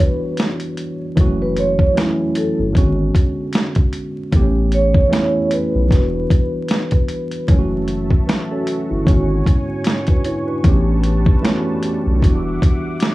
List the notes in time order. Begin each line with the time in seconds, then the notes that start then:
Already playing: E3 G3 B3 D4 F#4
0.00 B4, closed hi-hat
0.37 snare, closed hi-hat
0.60 closed hi-hat
0.77 closed hi-hat
1.16 F#1 E3 F#3 A3 C#4, kick, closed hi-hat
1.21 F#4
1.42 B4
1.56 C#5, closed hi-hat
1.79 kick
1.94 E3 F#3 A3 C#4, closed hi-hat
1.98 E4, snare
2.35 A4, closed hi-hat
2.59 G1
2.73 G#1 D3 G#3 B3 C#4, kick, closed hi-hat
2.78 F#4
3.15 kick, closed hi-hat
3.53 snare, closed hi-hat
3.75 kick, closed hi-hat
3.93 closed hi-hat
4.31 A1 E3 A3 B3 C4, kick, closed hi-hat
4.36 G4
4.42 C#4
4.72 C#5, closed hi-hat
4.94 kick
5.08 E3 A3 B3 C#4
5.13 E4, snare, closed hi-hat
5.51 B4, closed hi-hat
5.75 B1
5.88 E1 E3 F#3 B3 D4, kick
5.92 G3 F#4, snare, closed hi-hat
6.30 kick, closed hi-hat
6.68 snare, closed hi-hat
6.91 kick, closed hi-hat
7.08 closed hi-hat
7.31 closed hi-hat
7.47 F#1 E3 F#3 A3 C#4 F#4 E5 A5 C#6, kick, closed hi-hat
7.52 F4
7.59 F#4
7.88 closed hi-hat
8.11 kick
8.27 B4, snare, closed hi-hat
8.51 C#4 A4
8.67 closed hi-hat
8.90 G1 E4
9.04 G#1 G#2 D3 G#3 B3 C#4 C#5 G#5, kick
9.08 F#4, closed hi-hat
9.46 kick, closed hi-hat
9.84 snare, closed hi-hat
10.07 D4 B4, kick, closed hi-hat
10.24 E4 C#5, closed hi-hat
10.47 D4 B4
10.63 A1 E3 G3 A3 B3 C#4 B4 A5, kick, closed hi-hat
10.68 G4
11.04 closed hi-hat
11.26 kick
11.41 E3 A3 B3 C#4, snare, closed hi-hat
11.46 F4
11.53 F#4
11.83 closed hi-hat
12.06 B1
12.18 E3 F#3 B3 D4
12.22 E1 G3 F#4 E5 F#5 D6, kick, closed hi-hat
12.62 kick, closed hi-hat
13.00 snare, closed hi-hat